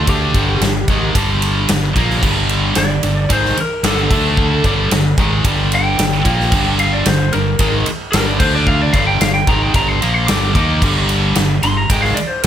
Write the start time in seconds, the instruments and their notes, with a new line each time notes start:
Already playing: fingered electric bass D2, distorted electric guitar D3 A3 D4
0.07 lead electric guitar G4, kick, ride
0.34 fingered electric bass G1, distorted electric guitar G2 D3 G3, kick, ride
0.61 fingered electric bass G1, distorted electric guitar G2 D3, snare, ride
0.88 fingered electric bass G#1, distorted electric guitar G#2 D#3 G#3, kick, ride
1.15 fingered electric bass G1, distorted electric guitar G2 D3 G3, kick, ride
1.42 ride
1.69 fingered electric bass G1, distorted electric guitar G2 D3, snare, ride
1.96 fingered electric bass A#1, distorted electric guitar A#2 F3 A#3, kick, ride
2.10 snare
2.22 fingered electric bass G1, distorted electric guitar G2 D3 G3, kick, crash
2.49 ride
2.75 fingered electric bass G1, distorted electric guitar G2 D3, lead electric guitar D5, snare, ride
3.03 fingered electric bass G1, distorted electric guitar G2 D3, ride
3.29 fingered electric bass G#1, distorted electric guitar G#2 D#3 G#3, lead electric guitar C5, kick, ride
3.45 snare
3.57 lead electric guitar A#4, muted distorted electric guitar stroke, ride
3.83 fingered electric bass G1, distorted electric guitar G2 D3 G3, snare, ride
3.88 lead electric guitar A4
4.11 fingered electric bass D2, distorted electric guitar D3 A3 D4, kick, crash
4.37 kick
4.64 fingered electric bass G1, distorted electric guitar G2 D3 G3, kick, ride
4.91 fingered electric bass G1, distorted electric guitar G2 D3, snare, ride
5.18 fingered electric bass G#1, distorted electric guitar G#2 D#3 G#3, kick, ride
5.44 fingered electric bass G1, distorted electric guitar G2 D3 G3, kick, ride
5.72 lead electric guitar G5, ride
5.98 fingered electric bass G1, distorted electric guitar G2 D3, snare, ride
6.24 fingered electric bass A#1, distorted electric guitar A#2 F3 A#3, kick, ride
6.40 snare
6.52 fingered electric bass G1, distorted electric guitar G2 D3 G3, kick, crash
6.79 lead electric guitar F5, ride
6.93 lead electric guitar D5
7.06 fingered electric bass G1, distorted electric guitar G2 D3, lead electric guitar C5, snare, ride
7.33 fingered electric bass G1, distorted electric guitar G2 D3, lead electric guitar A#4, ride
7.59 fingered electric bass G#1, distorted electric guitar G#2 D#3 G#3, kick, ride
7.86 muted distorted electric guitar stroke, muted fingered electric bass stroke, ride
8.12 fingered electric bass G1, distorted electric guitar G2 D3 G3, lead electric guitar A#4, snare, ride
8.27 lead electric guitar D5
8.39 fingered electric bass D2, distorted electric guitar D3 A3 D4, lead electric guitar C5, kick, crash
8.55 lead electric guitar D5
8.67 lead electric guitar F5, kick
8.82 lead electric guitar D5
8.93 fingered electric bass G1, distorted electric guitar G2 D3 G3, lead electric guitar F5, kick, ride
9.07 lead electric guitar G5
9.21 fingered electric bass G1, distorted electric guitar G2 D3, lead electric guitar F5, snare, ride
9.34 lead electric guitar G5
9.47 fingered electric bass G#1, distorted electric guitar G#2 D#3 G#3, lead electric guitar A#5, kick, ride
9.62 lead electric guitar G5
9.74 fingered electric bass G1, distorted electric guitar G2 D3 G3, lead electric guitar A#5, kick, ride
9.88 lead electric guitar C6
10.01 fingered electric bass A#1, distorted electric guitar A#2 F3 A#3, lead electric guitar A#5, ride
10.14 lead electric guitar C6
10.27 fingered electric bass G1, distorted electric guitar G2 D3 G3, lead electric guitar D6, snare, ride
10.55 fingered electric bass D#2, distorted electric guitar D#3 A#3 D#4, lead electric guitar D6, kick, ride
10.82 fingered electric bass G1, distorted electric guitar G2 D3 G3, kick, crash
11.09 ride
11.35 fingered electric bass G1, distorted electric guitar G2 D3, snare, ride
11.63 fingered electric bass G1, distorted electric guitar G2 D3, lead electric guitar C6, ride
11.77 lead electric guitar A#5
11.90 fingered electric bass G#1, distorted electric guitar G#2 D#3 G#3, lead electric guitar G5, kick, ride
12.02 lead electric guitar F5, snare
12.14 lead electric guitar D5, muted fingered electric bass stroke, muted distorted electric guitar stroke, ride
12.27 lead electric guitar C5
12.42 lead electric guitar A#4, ride